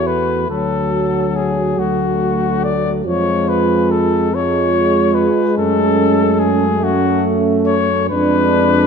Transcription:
Already playing: E2 A3 F#4
0.07 B4
0.49 D2 F#3 F#4 A4
1.36 G#4
1.77 D2 A3 F#4
2.64 D5
3.05 F2 F3 G#3 F4 C#5
3.49 B4
3.91 A4
4.31 G#3 F4 C#5
5.15 B4
5.56 F#2 A3 C#4 A4
6.39 G#4
6.80 A3 C#4 F#4
7.67 C#5
8.10 F2 G#3 D4 B4

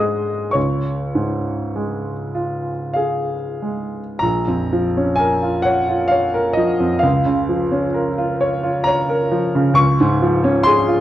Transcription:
Already playing: G#2 G#3 G#4 C5 D#5 C6 D#6
0.51 C#2 C#5 C#6
1.15 G#2
1.76 G#3
2.35 F4
2.94 G#4 F5
3.62 G#3
4.19 A#1 A#5
4.48 F2
4.73 F3
4.97 C#4
5.16 A#4 G#5
5.42 F4
5.62 C#5 F#5
5.88 F4
6.08 C#5 F5
6.34 A#4
6.54 F3 D#5
6.80 F2
6.99 C#2 F5
7.26 C#3
7.49 F3
7.72 C#4
7.94 A#4
8.18 F4
8.41 C#5
8.63 F4
8.84 C#5 A#5
9.09 A#4
9.32 F3
9.55 C#3
9.74 C#2 C#6
10.01 G#2
10.22 F3
10.44 C#4
10.64 G#4 C6
10.88 F4

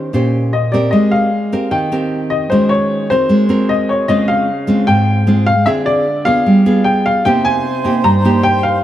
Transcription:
Already playing: D#3 C5
0.13 A#2 C#4 G4 C5
0.53 D#5
0.72 C4 G4 A#4 D5
0.91 G#3 D#5
1.11 F5
1.52 C4 G4 A#4
1.71 D#3 G5
1.92 C4 G4 A#4
2.30 D#5
2.50 D#3 G#3 C#4 F#4 C5
2.69 C#5
3.10 C4 F#4 A#4 C5
3.29 G#3
3.49 C4 F#4 A#4
3.69 D#5
3.89 C#5
4.08 C#3 G#3 C4 F4 D#5
4.28 F5
4.67 G#3 C4 F4
4.87 G#2 G5
5.27 G#3 C4 F4
5.46 F5
5.66 D3 C4 F4 G#4 E5
5.86 D5
6.25 B3 F4 G#4 F5
6.46 G3
6.66 B3 F4 G#4
6.84 G5
7.06 F5
7.25 C3 A#3 D#4 G4 C5 G5
7.45 G#5
7.84 A#3 D#4 G4
8.04 G2 A#5
8.25 A#3 D#4 G4
8.43 G5
8.63 F5

